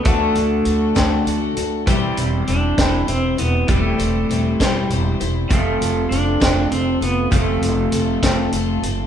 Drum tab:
HH |xxxxxx|xxxxxx|xxxxxx|xxxxxx|
SD |---o--|---o--|---o--|---o--|
BD |o--o--|o--o--|o--o--|o--o--|

HH |xxxxxx|
SD |---o--|
BD |o--o--|